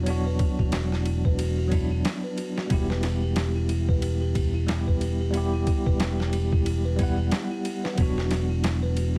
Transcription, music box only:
0.07 0.25 E4 medium
0.27 0.38 B4 medium
0.40 0.57 F#4 medium
0.59 0.71 F#4 medium
0.73 0.91 F#4 medium
0.92 1.04 E4 medium
1.05 1.24 E4 medium
1.25 1.37 B4 medium
1.38 1.56 F#4 medium
1.58 1.70 F#4 medium
1.72 1.90 F#4 medium
1.91 2.03 E4 medium
2.04 2.23 E4 medium
2.24 2.36 B4 medium
2.37 2.55 F#4 medium
2.56 2.69 F#4 medium
2.70 2.89 E4 medium
2.90 3.02 B4 medium
3.03 3.21 G4 medium
3.22 3.35 G4 medium
3.36 3.55 G4 medium
3.55 3.68 E4 medium
3.69 3.88 E4 medium
3.89 4.01 B4 medium
4.01 4.19 G4 medium
4.21 4.34 G4 medium
4.35 4.54 G4 medium
4.54 4.66 E4 medium
4.67 4.86 E4 medium
4.87 4.99 B4 medium
5.01 5.18 G4 medium
5.21 5.33 G4 medium
5.34 5.52 G4 medium
5.53 5.65 E4 medium
5.67 5.85 E4 medium
5.86 5.98 B4 medium
5.99 6.17 G4 medium
6.18 6.31 G4 medium
6.32 6.51 G4 medium
6.52 6.64 E4 medium
6.65 6.84 E4 medium
6.85 6.97 B4 medium
6.99 7.16 G4 medium
7.18 7.30 G4 medium
7.31 7.50 G4 medium
7.51 7.63 E4 medium
7.65 7.83 E4 medium
7.84 7.96 B4 medium
7.97 8.15 F#4 medium
8.16 8.29 F#4 medium
8.30 8.49 F#4 medium
8.50 8.62 E4 medium
8.63 8.82 E4 medium
8.82 8.95 B4 medium
8.96 9.14 F#4 medium

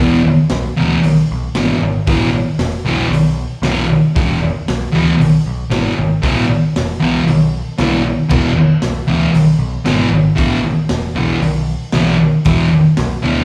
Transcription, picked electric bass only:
0.00 0.32 E1 medium
0.52 0.68 B1 medium
0.80 0.96 D2 medium
1.04 1.20 B1 medium
1.31 1.47 B1 medium
1.56 1.72 G#1 medium
1.82 1.98 G#1 medium
2.07 2.41 A1 medium
2.59 2.76 E1 medium
2.85 3.02 B1 medium
3.11 3.44 B1 medium
3.62 3.96 B1 medium
4.16 4.49 E1 medium
4.69 4.85 B1 medium
4.95 5.11 D2 medium
5.20 5.37 B1 medium
5.46 5.63 B1 loud
5.71 5.88 G#1 medium
5.99 6.15 G#1 medium
6.23 6.57 A1 medium
6.77 6.93 E1 medium
7.03 7.19 B1 medium
7.27 7.61 B1 medium
7.79 8.13 B1 medium
8.31 8.65 E1 medium
8.83 9.00 B1 medium
9.09 9.26 D2 medium
9.35 9.52 B1 medium
9.59 9.76 B1 medium
9.86 10.03 G#1 medium
10.12 10.29 G#1 loud
10.39 10.72 A1 medium
10.90 11.07 E1 medium
11.15 11.33 B1 medium
11.41 11.75 B1 medium
11.93 12.27 B1 medium
12.47 12.80 E1 medium
12.99 13.15 B1 medium
13.24 13.41 D2 medium

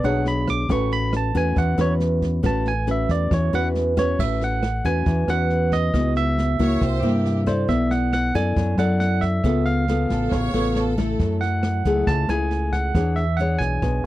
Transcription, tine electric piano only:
0.05 0.25 F#5 medium
0.28 0.48 B5 medium
0.50 0.70 D6 loud
0.72 0.92 C#6 medium
0.93 1.13 B5 loud
1.17 1.36 A5 medium
1.37 1.57 G#5 loud
1.58 1.79 F#5 medium
1.81 1.93 C#5 loud
2.46 2.66 A5 medium
2.68 2.88 G#5 loud
2.91 3.11 E5 medium
3.11 3.32 D5 medium
3.34 3.54 C#5 medium
3.55 3.68 F#5 loud
3.99 4.20 C#5 medium
4.20 4.42 E5 medium
4.44 4.87 F#5 loud
4.86 5.30 G#5 loud
5.30 5.74 F#5 loud
5.73 6.13 D#5 medium
6.17 7.51 E5 loud
7.47 7.70 C5 medium
7.69 7.91 E5 medium
7.91 8.12 F#5 medium
8.13 8.33 F#5 medium
8.35 8.80 G#5 loud
8.79 8.99 F#5 medium
9.00 9.23 F#5 medium
9.21 9.67 E5 medium
9.66 10.93 F5 medium
11.41 12.09 F#5 loud
12.07 12.30 A5 loud
12.30 12.74 G#5 loud
12.73 13.18 F#5 medium
13.16 13.39 E5 medium
13.37 13.60 F#5 loud
13.58 14.06 G#5 loud

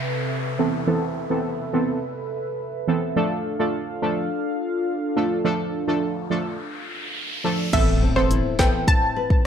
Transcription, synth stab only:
0.59 0.85 E3 medium
0.59 0.85 B3 medium
0.59 0.85 C4 medium
0.59 0.85 A4 medium
0.87 1.27 E3 medium
0.87 1.27 B3 medium
0.87 1.27 C4 medium
0.87 1.27 A4 loud
1.30 1.70 E3 medium
1.30 1.70 B3 medium
1.30 1.70 C4 medium
1.30 1.70 A4 medium
1.73 1.99 E3 medium
1.73 2.00 B3 medium
1.73 2.00 C4 medium
1.73 2.00 A4 medium
2.87 3.14 E3 medium
2.87 3.14 B3 medium
2.87 3.14 C4 medium
2.87 3.14 A4 medium
3.16 3.56 F3 medium
3.16 3.56 A3 medium
3.16 3.56 D4 medium
3.16 3.56 A4 loud
3.59 3.99 F3 medium
3.59 3.99 A3 medium
3.59 3.99 D4 medium
3.59 3.99 A4 medium
4.02 4.28 F3 medium
4.02 4.28 A3 medium
4.02 4.28 D4 medium
4.02 4.28 A4 medium
5.16 5.42 F3 medium
5.16 5.43 A3 medium
5.16 5.43 D4 medium
5.16 5.43 A4 medium
5.44 5.84 F3 medium
5.44 5.84 A3 medium
5.44 5.84 D4 medium
5.44 5.84 A4 loud
5.87 6.27 F3 medium
5.87 6.27 A3 medium
5.87 6.27 D4 medium
5.87 6.27 A4 medium
6.30 6.57 F3 medium
6.30 6.57 A3 medium
6.30 6.57 D4 medium
6.30 6.57 A4 medium
7.44 7.71 F3 medium
7.44 7.71 A3 medium
7.44 7.71 D4 medium
7.44 7.71 A4 medium
7.73 8.13 E3 medium
7.73 8.13 B3 medium
7.73 8.13 C4 medium
7.73 8.13 A4 loud
8.16 8.55 E3 medium
8.16 8.56 B3 medium
8.16 8.56 C4 medium
8.16 8.56 A4 medium
8.59 8.85 E3 medium
8.59 8.85 B3 medium
8.59 8.85 C4 medium
8.59 8.85 A4 medium

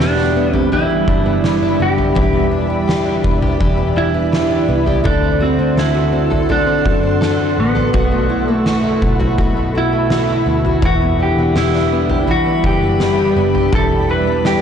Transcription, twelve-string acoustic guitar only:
0.00 0.71 E3 medium
0.00 0.35 B3 medium
0.00 0.17 D4 medium
0.00 0.53 G4 medium
0.18 1.07 D4 medium
0.36 0.89 B3 medium
0.54 0.71 G4 medium
0.72 2.14 E3 medium
0.72 1.43 G4 medium
0.90 1.25 B3 soft
1.08 1.62 D4 soft
1.26 1.79 B3 soft
1.44 1.97 G4 medium
1.62 2.51 D4 medium
1.80 2.32 B3 medium
1.98 2.14 G4 medium
2.15 3.59 E3 medium
2.15 2.86 G4 medium
2.33 2.69 B3 soft
2.51 3.05 D4 medium
2.70 3.23 B3 medium
2.88 3.41 G4 medium
3.05 3.96 D4 soft
3.24 3.76 B3 medium
3.42 3.60 G4 medium
3.60 5.12 E3 medium
3.60 4.31 G4 medium
3.77 4.13 B3 medium
3.96 4.50 D4 soft
4.14 4.67 B3 medium
4.32 4.85 G4 medium
4.51 5.26 D4 medium
4.68 5.12 B3 medium
4.86 5.04 G4 medium
5.04 6.48 D3 medium
5.04 5.77 A4 medium
5.23 5.58 C4 soft
5.40 5.94 F#4 medium
5.59 6.11 C4 medium
5.77 6.30 A4 medium
5.95 6.85 F#4 medium
6.13 6.65 C4 medium
6.30 6.49 A4 medium
6.49 7.93 D3 medium
6.49 7.21 A4 medium
6.66 7.02 C4 medium
6.86 7.39 F#4 medium
7.03 7.58 C4 soft
7.21 7.75 A4 medium
7.39 7.94 F#4 medium
7.75 7.93 A4 medium
7.93 9.37 B2 medium
7.93 8.65 F#4 medium
8.12 8.47 A3 soft
8.30 8.83 E4 medium
8.48 9.01 A3 medium
8.67 9.19 F#4 medium
8.84 9.75 E4 soft
9.02 9.55 A3 medium
9.20 9.37 F#4 medium
9.38 10.90 B2 medium
9.38 10.09 F#4 medium
9.57 9.91 A3 soft
9.75 10.28 E4 medium
9.93 10.45 A3 medium
10.11 10.64 F#4 medium
10.29 11.19 E4 medium
10.46 10.90 A3 medium
10.66 10.84 F#4 medium
10.84 12.27 E3 medium
11.02 11.37 B3 soft
11.19 11.74 D4 medium
11.38 11.91 B3 medium
11.56 12.09 G4 medium
11.74 12.63 D4 medium
11.93 12.45 B3 medium
12.10 12.28 G4 medium
12.28 13.72 E3 medium
12.46 12.81 B3 medium
12.64 13.18 D4 medium
12.82 13.35 B3 medium
13.00 13.53 G4 medium
13.18 14.09 D4 medium
13.36 13.90 B3 medium
13.54 13.72 G4 medium
13.73 14.62 E3 medium
13.73 14.44 G4 medium
13.91 14.26 B3 soft
14.09 14.62 D4 medium
14.27 14.62 B3 medium
14.45 14.62 G4 medium

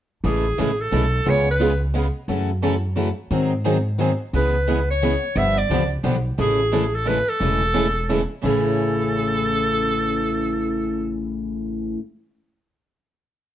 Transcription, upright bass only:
0.24 0.51 A1 medium
0.59 0.88 A1 medium
0.92 1.21 B1 medium
1.27 2.08 C#2 medium
2.28 3.10 F#2 medium
3.31 4.13 G#2 medium
4.33 5.15 C#2 medium
5.36 5.63 G1 medium
5.69 5.99 C#2 medium
6.04 6.33 B1 medium
6.38 7.20 A1 medium
7.41 8.23 E1 medium
8.44 11.95 A1 medium

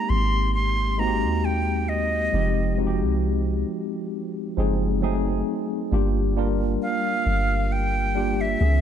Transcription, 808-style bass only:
0.10 1.25 G#1 loud
1.24 2.29 D#2 loud
2.34 3.04 F1 loud
3.03 3.65 C2 loud
4.58 5.43 F#1 loud
5.92 6.78 G1 loud
7.26 8.56 G1 loud
8.61 8.81 C#2 loud

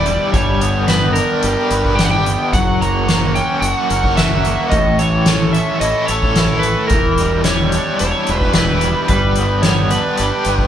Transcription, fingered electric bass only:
0.00 0.17 E1 medium
0.33 1.20 G1 medium
1.44 1.55 G1 medium
1.71 2.36 G1 medium
2.53 3.40 F#1 medium
3.61 3.73 F#1 medium
3.91 4.55 F#1 medium
4.72 5.59 A1 medium
5.81 5.92 A1 medium
6.09 6.74 A1 medium
6.90 7.77 E1 medium
8.01 8.12 E1 medium
8.29 8.93 E1 medium
9.09 9.96 G1 medium
10.20 10.30 G1 medium
10.46 10.67 G1 medium

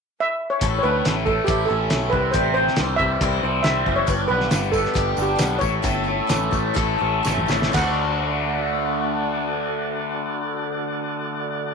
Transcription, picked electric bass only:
0.62 0.79 A1 medium
0.84 1.01 D2 medium
1.06 1.39 A1 medium
1.48 1.65 A1 medium
1.71 1.87 A1 medium
1.92 2.09 B1 medium
2.13 2.30 C2 medium
2.34 2.68 A1 medium
2.79 2.96 C2 medium
3.00 3.17 C2 medium
3.21 3.38 C2 loud
3.43 3.60 C2 medium
3.65 3.82 C2 medium
3.87 4.04 F#1 medium
4.08 4.25 G1 medium
4.30 4.47 B1 medium
4.52 4.86 G1 loud
4.96 5.13 G1 medium
5.18 5.35 G1 medium
5.39 5.57 B1 medium
5.62 5.79 A1 loud
5.84 6.20 G1 loud
6.31 6.49 A1 medium
6.52 6.71 A1 medium
6.76 6.95 A1 medium
7.02 7.20 A1 medium
7.26 7.45 A1 medium
7.49 7.69 A1 medium
7.74 11.74 D2 medium

